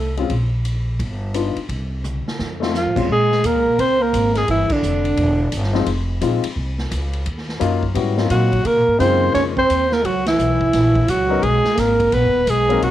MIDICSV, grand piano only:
0, 0, Header, 1, 2, 480
1, 0, Start_track
1, 0, Key_signature, -5, "minor"
1, 0, Tempo, 347625
1, 423, Time_signature, 4, 2, 24, 8
1, 17822, End_track
2, 0, Start_track
2, 0, Title_t, "Grand piano"
2, 0, Program_c, 0, 0
2, 243, Note_on_c, 0, 56, 64
2, 258, Note_on_c, 0, 60, 64
2, 262, Note_on_c, 0, 61, 58
2, 273, Note_on_c, 0, 65, 72
2, 403, Note_off_c, 0, 56, 0
2, 410, Note_off_c, 0, 60, 0
2, 412, Note_off_c, 0, 61, 0
2, 417, Note_off_c, 0, 65, 0
2, 1852, Note_on_c, 0, 59, 62
2, 1855, Note_on_c, 0, 62, 53
2, 1864, Note_on_c, 0, 63, 52
2, 1870, Note_on_c, 0, 65, 67
2, 2134, Note_off_c, 0, 59, 0
2, 2135, Note_off_c, 0, 62, 0
2, 2140, Note_off_c, 0, 63, 0
2, 2143, Note_off_c, 0, 65, 0
2, 3591, Note_on_c, 0, 57, 62
2, 3607, Note_on_c, 0, 60, 57
2, 3611, Note_on_c, 0, 63, 53
2, 3621, Note_on_c, 0, 65, 70
2, 3758, Note_off_c, 0, 57, 0
2, 3765, Note_off_c, 0, 60, 0
2, 3768, Note_off_c, 0, 63, 0
2, 3773, Note_off_c, 0, 65, 0
2, 4082, Note_on_c, 0, 46, 61
2, 4089, Note_on_c, 0, 56, 55
2, 4092, Note_on_c, 0, 60, 55
2, 4099, Note_on_c, 0, 61, 53
2, 4104, Note_on_c, 0, 65, 67
2, 4243, Note_off_c, 0, 46, 0
2, 4247, Note_off_c, 0, 56, 0
2, 4248, Note_off_c, 0, 60, 0
2, 4251, Note_off_c, 0, 61, 0
2, 4254, Note_off_c, 0, 65, 0
2, 7916, Note_on_c, 0, 53, 78
2, 7920, Note_on_c, 0, 56, 71
2, 7928, Note_on_c, 0, 60, 70
2, 7936, Note_on_c, 0, 63, 68
2, 7936, Note_on_c, 0, 65, 79
2, 8080, Note_off_c, 0, 53, 0
2, 8082, Note_off_c, 0, 56, 0
2, 8086, Note_off_c, 0, 60, 0
2, 8090, Note_off_c, 0, 63, 0
2, 8090, Note_off_c, 0, 65, 0
2, 8580, Note_on_c, 0, 53, 65
2, 8581, Note_on_c, 0, 56, 56
2, 8591, Note_on_c, 0, 60, 58
2, 8595, Note_on_c, 0, 63, 57
2, 8599, Note_on_c, 0, 65, 74
2, 8858, Note_off_c, 0, 53, 0
2, 8859, Note_off_c, 0, 56, 0
2, 8864, Note_off_c, 0, 60, 0
2, 8866, Note_off_c, 0, 63, 0
2, 8868, Note_off_c, 0, 65, 0
2, 10487, Note_on_c, 0, 54, 68
2, 10495, Note_on_c, 0, 58, 68
2, 10500, Note_on_c, 0, 61, 69
2, 10507, Note_on_c, 0, 63, 67
2, 10508, Note_on_c, 0, 65, 80
2, 10772, Note_off_c, 0, 54, 0
2, 10776, Note_off_c, 0, 58, 0
2, 10778, Note_off_c, 0, 61, 0
2, 10782, Note_off_c, 0, 63, 0
2, 10782, Note_off_c, 0, 65, 0
2, 10969, Note_on_c, 0, 55, 62
2, 10969, Note_on_c, 0, 59, 55
2, 10982, Note_on_c, 0, 61, 54
2, 10984, Note_on_c, 0, 64, 57
2, 10992, Note_on_c, 0, 66, 69
2, 11253, Note_off_c, 0, 55, 0
2, 11253, Note_off_c, 0, 59, 0
2, 11259, Note_off_c, 0, 61, 0
2, 11261, Note_off_c, 0, 64, 0
2, 11265, Note_off_c, 0, 66, 0
2, 11277, Note_on_c, 0, 54, 62
2, 11287, Note_on_c, 0, 58, 56
2, 11290, Note_on_c, 0, 60, 57
2, 11293, Note_on_c, 0, 63, 56
2, 11305, Note_on_c, 0, 65, 68
2, 11704, Note_off_c, 0, 54, 0
2, 11708, Note_off_c, 0, 58, 0
2, 11710, Note_off_c, 0, 60, 0
2, 11711, Note_off_c, 0, 63, 0
2, 11717, Note_off_c, 0, 65, 0
2, 12406, Note_on_c, 0, 56, 75
2, 12421, Note_on_c, 0, 49, 68
2, 12421, Note_on_c, 0, 58, 69
2, 12424, Note_on_c, 0, 63, 68
2, 12433, Note_on_c, 0, 65, 79
2, 13141, Note_off_c, 0, 56, 0
2, 13149, Note_off_c, 0, 49, 0
2, 13149, Note_off_c, 0, 58, 0
2, 13150, Note_off_c, 0, 63, 0
2, 13155, Note_off_c, 0, 65, 0
2, 15588, Note_on_c, 0, 54, 72
2, 15599, Note_on_c, 0, 59, 68
2, 15607, Note_on_c, 0, 61, 68
2, 15615, Note_on_c, 0, 63, 71
2, 15616, Note_on_c, 0, 70, 83
2, 15757, Note_off_c, 0, 54, 0
2, 15762, Note_off_c, 0, 59, 0
2, 15767, Note_off_c, 0, 61, 0
2, 15771, Note_off_c, 0, 63, 0
2, 15771, Note_off_c, 0, 70, 0
2, 17523, Note_on_c, 0, 54, 81
2, 17534, Note_on_c, 0, 58, 72
2, 17537, Note_on_c, 0, 60, 75
2, 17545, Note_on_c, 0, 63, 70
2, 17553, Note_on_c, 0, 70, 87
2, 17685, Note_off_c, 0, 54, 0
2, 17690, Note_off_c, 0, 58, 0
2, 17692, Note_off_c, 0, 60, 0
2, 17696, Note_off_c, 0, 63, 0
2, 17700, Note_off_c, 0, 70, 0
2, 17822, End_track
0, 0, End_of_file